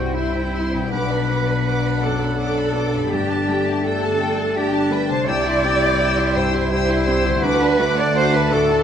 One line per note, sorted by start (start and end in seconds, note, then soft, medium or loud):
0.00 0.88 C2 soft
0.00 0.92 C2 soft
0.00 0.38 G2 soft
0.00 0.86 C3 soft
0.00 0.54 G3 soft
0.00 0.88 G3 medium
0.00 0.89 G3 soft
0.00 0.15 C4 soft
0.00 0.88 C4 medium
0.00 0.12 E4 soft
0.00 0.15 E4 soft
0.00 0.91 E4 soft
0.00 0.15 F#4 medium
0.00 0.14 C5 soft
0.00 0.15 C5 soft
0.00 0.93 C5 soft
0.00 0.13 G5 medium
0.00 0.16 G5 soft
0.13 0.92 E4 medium
0.13 0.49 E4 soft
0.13 0.33 E4 medium
0.13 0.94 E4 medium
0.13 0.50 C5 soft
0.13 0.31 E5 soft
0.13 0.90 G5 soft
0.13 0.33 C6 soft
0.31 0.53 C4 soft
0.31 0.52 C5 soft
0.31 0.54 G5 soft
0.50 0.93 G3 soft
0.50 0.73 E4 soft
0.50 0.71 E5 soft
0.55 0.74 C6 soft
0.68 0.90 C5 soft
0.73 3.06 B2 soft
0.73 0.92 C4 soft
0.73 0.93 G5 soft
0.79 3.08 B3 soft
0.83 3.10 F#4 soft
0.87 3.08 F#3 medium
0.87 5.10 D4 medium
0.87 3.06 D5 soft
0.87 1.07 F#5 medium
0.92 3.08 B1 medium
0.92 1.10 B3 medium
0.92 2.85 D4 medium
0.92 2.00 B4 medium
0.92 2.81 F#5 medium
0.92 1.11 D6 medium
1.06 1.27 D5 soft
1.11 1.30 D4 soft
1.11 1.30 B5 soft
1.25 1.46 F#5 soft
1.29 1.48 B3 soft
1.29 1.88 B3 soft
1.29 1.48 D6 soft
1.43 1.66 D4 soft
1.43 1.64 D5 soft
1.49 1.67 B5 soft
1.63 1.83 B3 soft
1.63 1.98 F#4 soft
1.63 1.99 D5 soft
1.63 1.81 F#5 soft
1.63 1.83 D6 soft
1.79 2.00 D5 soft
1.84 2.02 D4 soft
1.84 2.03 B5 soft
1.99 2.20 B3 soft
1.99 2.37 A4 medium
1.99 2.19 F#5 soft
2.04 2.61 F#2 soft
2.04 2.21 D6 soft
2.18 2.38 D4 soft
2.18 2.37 D5 soft
2.22 2.39 B5 soft
2.35 2.55 B3 medium
2.35 2.71 F#4 soft
2.35 3.10 A4 medium
2.35 2.72 D5 soft
2.35 2.54 F#5 soft
2.40 2.56 D6 soft
2.53 2.74 D4 soft
2.53 2.73 D5 soft
2.59 2.76 B5 soft
2.72 2.93 B3 medium
2.72 3.12 B3 soft
2.72 2.92 F#5 soft
2.76 2.94 D6 medium
2.90 3.11 D4 soft
2.90 3.10 D5 soft
2.94 5.22 G2 soft
2.94 3.13 B5 soft
2.99 5.24 A3 soft
3.04 5.17 G4 soft
3.04 5.28 D5 soft
3.08 3.29 A3 medium
3.08 3.81 D4 medium
3.08 3.84 G4 medium
3.08 3.27 G5 medium
3.08 3.81 A5 medium
3.12 5.24 G1 medium
3.12 5.24 G2 medium
3.12 5.10 A3 medium
3.12 3.30 G5 medium
3.28 3.48 D4 medium
3.28 3.47 A5 medium
3.32 3.50 A5 medium
3.45 3.66 A3 medium
3.45 4.06 A3 soft
3.45 3.65 G5 medium
3.51 3.68 G5 soft
3.64 3.84 D4 soft
3.64 3.83 A5 soft
3.70 3.86 A5 soft
3.83 4.01 A3 soft
3.83 4.54 D4 medium
3.83 4.17 G4 soft
3.83 4.55 A4 medium
3.83 4.18 D5 medium
3.83 4.01 G5 medium
3.83 4.02 G5 medium
3.83 4.55 A5 medium
4.02 4.20 D4 soft
4.02 4.20 A5 medium
4.02 4.21 A5 medium
4.18 4.78 D3 soft
4.18 4.37 A3 medium
4.18 4.37 G5 soft
4.23 4.39 G5 medium
4.38 4.56 D4 medium
4.38 4.56 A5 medium
4.38 4.57 A5 soft
4.55 4.72 A3 medium
4.55 5.27 D4 medium
4.55 4.88 G4 soft
4.55 4.92 G4 medium
4.55 4.89 D5 medium
4.55 4.72 G5 medium
4.55 4.73 G5 medium
4.55 5.30 A5 medium
4.72 4.91 D4 medium
4.72 4.91 A5 medium
4.72 4.93 A5 medium
4.91 5.10 A3 medium
4.91 5.28 A3 medium
4.91 5.10 B4 medium
4.91 5.09 G5 medium
4.91 5.11 G5 medium
5.07 7.37 C3 medium
5.07 5.28 D4 medium
5.07 5.28 C5 medium
5.07 5.27 A5 medium
5.07 5.28 A5 medium
5.14 7.39 C4 soft
5.18 7.42 G4 medium
5.24 7.39 G3 medium
5.24 7.39 E4 medium
5.24 6.35 D5 loud
5.24 7.44 E5 medium
5.24 5.44 G5 medium
5.28 7.39 C2 medium
5.28 7.40 C2 medium
5.28 6.68 E4 medium
5.28 5.44 G4 medium
5.28 6.69 G5 medium
5.28 5.45 E6 medium
5.44 5.64 E4 medium
5.44 5.63 E5 medium
5.44 5.64 C6 medium
5.61 6.21 C4 medium
5.61 5.82 G4 medium
5.61 5.80 G5 medium
5.61 5.82 E6 medium
5.78 5.97 E5 medium
5.82 6.00 E4 medium
5.82 6.00 C6 medium
5.97 6.16 G4 medium
5.97 6.32 G4 medium
5.97 6.32 E5 medium
5.97 6.15 G5 medium
6.01 6.17 E6 medium
6.15 6.35 E4 medium
6.15 6.34 E5 medium
6.15 6.35 C6 medium
6.34 6.93 G2 soft
6.34 6.53 G4 medium
6.34 6.70 C5 medium
6.34 6.53 G5 medium
6.34 6.54 E6 medium
6.52 6.71 E4 medium
6.52 6.71 E5 medium
6.52 6.71 C6 medium
6.70 7.46 E4 medium
6.70 6.88 G4 medium
6.70 7.04 G4 medium
6.70 7.42 C5 medium
6.70 7.04 E5 medium
6.70 7.44 G5 medium
6.70 6.88 G5 medium
6.70 6.88 E6 medium
6.87 7.07 E4 medium
6.87 7.06 E5 medium
6.87 7.07 C6 medium
7.07 7.43 C4 medium
7.07 7.25 G4 medium
7.07 7.25 G5 medium
7.07 7.25 E6 medium
7.25 8.83 D3 medium
7.25 7.43 E4 medium
7.25 7.44 E5 soft
7.25 7.44 C6 medium
7.31 8.83 A3 medium
7.36 8.83 F#5 medium
7.40 8.83 D2 medium
7.40 8.83 A3 medium
7.40 7.60 F#4 medium
7.40 8.83 A4 medium
7.40 7.98 B4 loud
7.40 8.83 D5 medium
7.40 7.60 F#5 medium
7.40 8.83 F#5 medium
7.44 8.83 D4 medium
7.44 7.61 D6 medium
7.61 7.80 D4 medium
7.61 7.79 D5 medium
7.61 7.80 A5 medium
7.78 8.37 A3 medium
7.78 7.98 F#4 medium
7.78 7.97 F#5 medium
7.78 7.98 D6 medium
7.96 8.16 D4 medium
7.96 8.15 D5 medium
7.96 8.16 D5 loud
7.96 8.15 A5 medium
8.15 8.32 F#4 medium
8.15 8.49 F#4 medium
8.15 8.34 C5 loud
8.15 8.49 D5 medium
8.15 8.32 F#5 medium
8.15 8.33 D6 medium
8.32 8.51 D4 medium
8.32 8.52 B4 loud
8.32 8.52 D5 medium
8.32 8.51 A5 medium
8.50 8.83 A2 medium
8.50 8.70 F#4 medium
8.50 8.83 A4 loud
8.50 8.69 F#5 medium
8.50 8.70 D6 medium
8.68 8.83 D4 medium
8.68 8.83 D5 medium
8.68 8.83 A5 medium